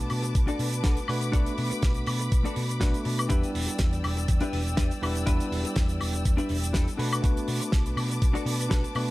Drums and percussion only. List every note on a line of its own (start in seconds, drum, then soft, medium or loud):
0.10 open hi-hat medium
0.10 high woodblock medium
0.24 closed hi-hat medium
0.24 shaker medium
0.35 kick loud
0.35 closed hi-hat medium
0.35 shaker medium
0.48 closed hi-hat soft
0.48 shaker soft
0.59 open hi-hat loud
0.73 closed hi-hat medium
0.73 shaker medium
0.84 kick loud
0.84 snare loud
0.84 closed hi-hat loud
0.84 shaker medium
0.97 closed hi-hat medium
0.97 shaker soft
1.08 open hi-hat medium
1.08 high woodblock medium
1.21 closed hi-hat medium
1.21 shaker medium
1.33 kick loud
1.33 closed hi-hat medium
1.33 shaker medium
1.46 closed hi-hat medium
1.46 shaker soft
1.58 open hi-hat loud
1.71 closed hi-hat medium
1.71 shaker medium
1.82 kick loud
1.82 snare loud
1.82 closed hi-hat medium
1.82 shaker medium
1.94 closed hi-hat soft
1.94 shaker soft
2.06 open hi-hat loud
2.06 high woodblock medium
2.20 closed hi-hat medium
2.20 shaker medium
2.32 kick loud
2.32 closed hi-hat medium
2.32 shaker medium
2.45 closed hi-hat medium
2.45 shaker soft
2.56 open hi-hat loud
2.69 closed hi-hat medium
2.69 shaker medium
2.81 kick loud
2.81 snare loud
2.81 closed hi-hat medium
2.81 shaker medium
2.94 closed hi-hat medium
2.94 shaker medium
3.05 open hi-hat loud
3.19 closed hi-hat medium
3.19 high woodblock medium
3.19 shaker medium
3.30 kick loud
3.30 closed hi-hat medium
3.30 shaker medium
3.43 closed hi-hat soft
3.43 shaker soft
3.55 open hi-hat loud
3.68 closed hi-hat medium
3.68 shaker medium
3.78 kick loud
3.78 snare loud
3.78 closed hi-hat loud
3.78 shaker medium
3.93 closed hi-hat medium
3.93 shaker medium
4.04 open hi-hat loud
4.04 high woodblock medium
4.17 closed hi-hat medium
4.17 shaker medium
4.28 kick loud
4.28 closed hi-hat loud
4.28 shaker medium
4.40 closed hi-hat medium
4.40 shaker soft
4.53 open hi-hat loud
4.67 closed hi-hat soft
4.67 shaker medium
4.77 kick loud
4.77 snare loud
4.77 closed hi-hat loud
4.77 shaker medium
4.91 closed hi-hat medium
4.91 shaker medium
5.03 open hi-hat loud
5.03 high woodblock medium
5.15 closed hi-hat medium
5.15 shaker medium
5.27 kick loud
5.27 closed hi-hat loud
5.27 shaker medium
5.40 closed hi-hat medium
5.40 shaker medium
5.52 open hi-hat loud
5.65 closed hi-hat medium
5.65 shaker medium
5.76 kick loud
5.76 snare loud
5.76 closed hi-hat medium
5.76 shaker medium
5.89 closed hi-hat medium
5.89 shaker soft
6.01 open hi-hat loud
6.01 high woodblock medium
6.14 closed hi-hat medium
6.14 shaker medium
6.25 kick loud
6.25 closed hi-hat medium
6.25 shaker medium
6.38 closed hi-hat medium
6.38 shaker soft
6.49 open hi-hat loud
6.63 closed hi-hat medium
6.63 shaker medium
6.74 kick loud
6.74 snare loud
6.74 closed hi-hat loud
6.74 shaker medium
6.88 closed hi-hat medium
6.88 shaker medium
6.99 open hi-hat loud
7.13 closed hi-hat soft
7.13 high woodblock medium
7.13 shaker medium
7.24 kick loud
7.24 closed hi-hat loud
7.24 shaker medium
7.37 closed hi-hat medium
7.37 shaker medium
7.48 open hi-hat loud
7.61 closed hi-hat medium
7.61 shaker medium
7.72 kick loud
7.72 snare loud
7.72 closed hi-hat loud
7.72 shaker medium
7.86 closed hi-hat medium
7.86 shaker soft
7.97 open hi-hat loud
7.97 high woodblock medium
8.11 closed hi-hat medium
8.11 shaker medium
8.22 kick loud
8.22 closed hi-hat medium
8.22 shaker medium
8.35 closed hi-hat soft
8.35 shaker medium
8.46 open hi-hat loud
8.60 closed hi-hat medium
8.60 shaker medium
8.71 kick loud
8.71 snare loud
8.71 closed hi-hat loud
8.71 shaker medium
8.84 closed hi-hat medium
8.84 shaker medium
8.95 open hi-hat medium
8.95 high woodblock medium